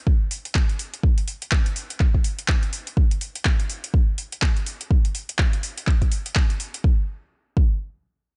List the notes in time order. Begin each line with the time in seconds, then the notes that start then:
0.07 kick
0.31 open hi-hat
0.45 closed hi-hat
0.55 kick, clap
0.69 closed hi-hat
0.79 open hi-hat
0.94 closed hi-hat
1.03 kick
1.18 closed hi-hat
1.28 open hi-hat
1.42 closed hi-hat
1.51 kick, clap
1.66 closed hi-hat
1.76 open hi-hat
1.90 closed hi-hat
2.00 kick, clap
2.14 kick
2.24 open hi-hat
2.39 closed hi-hat
2.48 kick, clap
2.63 closed hi-hat
2.73 open hi-hat
2.87 closed hi-hat
2.97 kick
3.11 closed hi-hat
3.21 open hi-hat
3.35 closed hi-hat
3.45 kick, clap
3.60 closed hi-hat
3.70 open hi-hat
3.84 closed hi-hat
3.94 kick
4.18 open hi-hat
4.32 closed hi-hat
4.42 kick, clap
4.57 closed hi-hat
4.66 open hi-hat
4.81 closed hi-hat
4.91 kick
5.05 closed hi-hat
5.15 open hi-hat
5.29 closed hi-hat
5.38 kick, clap
5.53 closed hi-hat
5.63 open hi-hat
5.78 closed hi-hat
5.87 kick, clap
6.02 kick, closed hi-hat
6.12 open hi-hat
6.26 closed hi-hat
6.35 kick, clap
6.50 closed hi-hat
6.60 open hi-hat
6.74 closed hi-hat
6.84 kick
7.57 kick